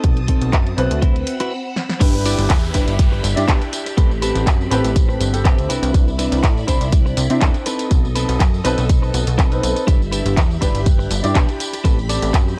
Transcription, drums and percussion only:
0.04 kick, closed hi-hat
0.17 closed hi-hat
0.28 kick, open hi-hat
0.42 closed hi-hat
0.53 kick, clap, closed hi-hat
0.67 closed hi-hat
0.78 clap, open hi-hat
0.91 closed hi-hat
1.02 kick, closed hi-hat
1.16 closed hi-hat
1.27 open hi-hat
1.40 closed hi-hat
1.76 snare
1.89 snare
2.01 kick, closed hi-hat, crash, tambourine
2.15 tambourine
2.25 open hi-hat, tambourine
2.39 closed hi-hat, tambourine
2.50 kick, clap, closed hi-hat, tambourine
2.64 tambourine
2.74 kick, open hi-hat, tambourine
2.88 closed hi-hat, tambourine
2.99 kick, closed hi-hat, tambourine
3.13 tambourine
3.24 open hi-hat, tambourine
3.37 closed hi-hat, tambourine
3.48 kick, clap, closed hi-hat, tambourine
3.62 closed hi-hat, tambourine
3.73 open hi-hat, tambourine
3.86 closed hi-hat, tambourine
3.98 kick, closed hi-hat, tambourine
4.11 tambourine
4.22 open hi-hat, tambourine
4.35 closed hi-hat, tambourine
4.47 kick, clap, closed hi-hat, tambourine
4.61 tambourine
4.71 clap, open hi-hat, tambourine
4.84 closed hi-hat, tambourine
4.96 kick, closed hi-hat, tambourine
5.10 tambourine
5.21 open hi-hat, tambourine
5.34 closed hi-hat, tambourine
5.45 kick, clap, closed hi-hat, tambourine
5.58 closed hi-hat, tambourine
5.70 open hi-hat, tambourine
5.83 closed hi-hat, tambourine
5.94 kick, closed hi-hat, tambourine
6.08 tambourine
6.19 open hi-hat, tambourine
6.32 closed hi-hat, tambourine
6.43 kick, clap, closed hi-hat, tambourine
6.57 tambourine
6.68 kick, open hi-hat, tambourine
6.81 closed hi-hat, tambourine
6.92 kick, closed hi-hat, tambourine
7.07 tambourine
7.17 open hi-hat, tambourine
7.30 closed hi-hat, tambourine
7.41 kick, clap, closed hi-hat, tambourine
7.54 closed hi-hat, tambourine
7.66 open hi-hat, tambourine
7.79 closed hi-hat, tambourine
7.91 kick, closed hi-hat, tambourine
8.05 tambourine
8.16 open hi-hat, tambourine
8.29 closed hi-hat, tambourine
8.40 kick, clap, closed hi-hat, tambourine
8.54 tambourine
8.65 clap, open hi-hat, tambourine
8.78 closed hi-hat, tambourine
8.89 kick, closed hi-hat, tambourine
9.03 tambourine
9.14 open hi-hat, tambourine
9.27 closed hi-hat, tambourine
9.39 kick, clap, closed hi-hat, tambourine
9.52 closed hi-hat, tambourine
9.63 open hi-hat, tambourine
9.76 closed hi-hat, tambourine
9.88 kick, closed hi-hat, tambourine
10.02 tambourine
10.12 open hi-hat, tambourine
10.26 closed hi-hat, tambourine
10.37 kick, clap, closed hi-hat, tambourine
10.51 tambourine
10.62 kick, open hi-hat, tambourine
10.75 closed hi-hat, tambourine
10.86 kick, closed hi-hat, tambourine
11.00 tambourine
11.11 open hi-hat, tambourine
11.24 closed hi-hat, tambourine
11.35 kick, clap, closed hi-hat, tambourine
11.49 closed hi-hat, tambourine
11.60 open hi-hat, tambourine
11.73 closed hi-hat, tambourine
11.85 kick, closed hi-hat, tambourine
11.99 tambourine
12.09 open hi-hat, tambourine
12.22 closed hi-hat, tambourine
12.34 kick, clap, closed hi-hat, tambourine
12.48 tambourine

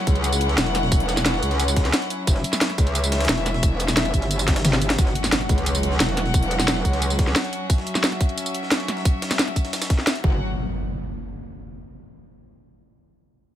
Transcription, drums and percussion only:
0.07 kick, closed hi-hat, tambourine
0.15 closed hi-hat
0.24 closed hi-hat, tambourine
0.32 closed hi-hat, tambourine
0.41 closed hi-hat
0.49 snare, closed hi-hat
0.58 snare, closed hi-hat, tambourine
0.66 closed hi-hat
0.75 snare, closed hi-hat, tambourine
0.83 snare
0.92 kick, closed hi-hat, tambourine
1.00 closed hi-hat
1.09 snare, closed hi-hat, tambourine
1.17 snare, closed hi-hat, tambourine
1.26 snare, closed hi-hat, tambourine
1.34 snare
1.43 closed hi-hat, tambourine
1.51 snare, closed hi-hat
1.60 closed hi-hat, tambourine
1.68 tambourine
1.76 kick, snare, closed hi-hat
1.85 snare, closed hi-hat
1.93 snare, closed hi-hat, tambourine
2.02 closed hi-hat
2.10 closed hi-hat, tambourine
2.27 kick, closed hi-hat, tambourine
2.36 snare
2.44 closed hi-hat, tambourine
2.53 snare, tambourine
2.61 snare, closed hi-hat, tambourine
2.70 snare, closed hi-hat
2.78 kick, closed hi-hat, tambourine
2.87 closed hi-hat
2.95 closed hi-hat, tambourine
3.04 closed hi-hat, tambourine
3.12 snare, closed hi-hat
3.21 snare, closed hi-hat
3.25 snare, closed hi-hat
3.29 snare, closed hi-hat, tambourine
3.38 closed hi-hat
3.46 snare, closed hi-hat, tambourine
3.54 snare
3.63 kick, closed hi-hat, tambourine
3.80 closed hi-hat, tambourine
3.88 snare, tambourine
3.97 snare, closed hi-hat, tambourine
4.05 snare, closed hi-hat
4.14 kick, closed hi-hat, tambourine
4.22 snare, closed hi-hat
4.31 closed hi-hat, tambourine
4.39 tambourine
4.48 kick, snare, closed hi-hat
4.56 snare, closed hi-hat
4.65 snare, closed hi-hat, mid tom, tambourine
4.73 snare, closed hi-hat
4.82 closed hi-hat, tambourine
4.90 snare, closed hi-hat
4.98 kick, closed hi-hat, tambourine
5.07 snare
5.15 closed hi-hat
5.24 snare, tambourine
5.32 snare, closed hi-hat, tambourine
5.41 snare, closed hi-hat
5.49 kick, closed hi-hat, tambourine
5.58 closed hi-hat
5.66 closed hi-hat, tambourine
5.75 closed hi-hat, tambourine
5.83 closed hi-hat
5.92 snare
6.00 snare, closed hi-hat, tambourine
6.09 closed hi-hat
6.17 snare, closed hi-hat
6.26 snare
6.34 kick, closed hi-hat, tambourine
6.43 closed hi-hat
6.51 snare, closed hi-hat
6.59 snare, closed hi-hat, tambourine
6.68 snare, closed hi-hat, tambourine
6.76 snare
6.85 kick, closed hi-hat, tambourine
6.93 snare, closed hi-hat
7.02 closed hi-hat, tambourine
7.10 tambourine
7.19 kick, snare, closed hi-hat
7.27 snare
7.36 snare, closed hi-hat, tambourine
7.44 closed hi-hat
7.53 closed hi-hat
7.70 kick, closed hi-hat, tambourine
7.78 snare
7.87 closed hi-hat
7.95 snare, tambourine
8.04 snare, closed hi-hat, tambourine
8.12 snare, closed hi-hat
8.21 kick, closed hi-hat, tambourine
8.29 closed hi-hat
8.38 closed hi-hat, tambourine
8.46 closed hi-hat, tambourine
8.54 closed hi-hat
8.63 snare
8.71 snare, closed hi-hat, tambourine
8.80 closed hi-hat
8.88 snare, closed hi-hat
8.97 snare
9.05 kick, closed hi-hat, tambourine
9.22 snare, closed hi-hat
9.31 snare, closed hi-hat, tambourine
9.39 snare, closed hi-hat, tambourine
9.48 snare, closed hi-hat
9.56 kick, closed hi-hat, tambourine
9.65 snare, closed hi-hat
9.73 snare, closed hi-hat, tambourine
9.82 snare, closed hi-hat, tambourine
9.90 kick, snare, closed hi-hat
9.99 snare
10.07 snare, closed hi-hat, tambourine
10.15 closed hi-hat
10.24 kick

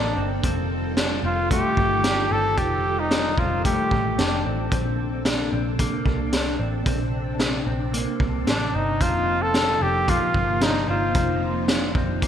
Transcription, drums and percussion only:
0.43 kick, closed hi-hat
0.97 snare, closed hi-hat
1.51 kick, closed hi-hat
1.77 kick
2.04 snare, closed hi-hat
2.57 kick, closed hi-hat
3.11 snare, closed hi-hat
3.38 kick
3.65 kick, closed hi-hat
3.91 kick
4.19 snare, closed hi-hat
4.72 kick, closed hi-hat
5.25 snare, closed hi-hat
5.79 kick, closed hi-hat
6.06 kick
6.33 snare, closed hi-hat
6.86 kick, closed hi-hat
7.40 snare, closed hi-hat
7.94 closed hi-hat
8.20 kick
8.47 snare, closed hi-hat
9.01 kick, closed hi-hat
9.54 snare, closed hi-hat
10.08 kick, closed hi-hat
10.34 kick
10.61 snare, closed hi-hat
11.15 kick, closed hi-hat
11.68 snare, closed hi-hat
11.95 kick
12.22 kick, closed hi-hat

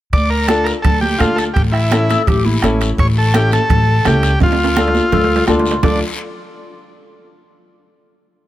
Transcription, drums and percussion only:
0.13 bombo low, high conga, high timbale, long guiro
0.48 bombo rim, high conga, high timbale, short guiro
0.66 high timbale, short guiro
0.85 bombo low, high conga, low conga, high timbale, long guiro
1.03 high conga
1.20 bombo low, bombo rim, high conga, high timbale, short guiro
1.38 high timbale, short guiro
1.56 bombo low, high conga, low conga, high timbale, long guiro
1.74 bombo rim
1.91 bombo rim, high conga, high timbale, short guiro
2.10 high conga, high timbale, short guiro
2.27 bombo low, high conga, low conga, high timbale, long guiro
2.45 high conga
2.62 bombo rim, high conga, high timbale, short guiro
2.81 high timbale, short guiro
2.98 bombo low, high conga, high timbale, long guiro
3.34 bombo rim, high conga, high timbale, short guiro
3.52 high conga, high timbale, short guiro
3.69 bombo low, high conga, low conga, high timbale, long guiro
4.05 bombo rim, high conga, high timbale, short guiro
4.23 high timbale, short guiro
4.40 bombo low, high conga, low conga, high timbale, long guiro
4.52 high timbale
4.64 high timbale
4.76 bombo rim, high conga, short guiro
4.88 low timbale
4.95 high conga, short guiro
5.12 bombo low, high conga, low conga, low timbale, long guiro
5.24 low timbale
5.36 low timbale
5.48 bombo rim, high conga, short guiro
5.59 low timbale
5.66 short guiro
5.71 low timbale
5.83 bombo low, low conga, low timbale, long guiro

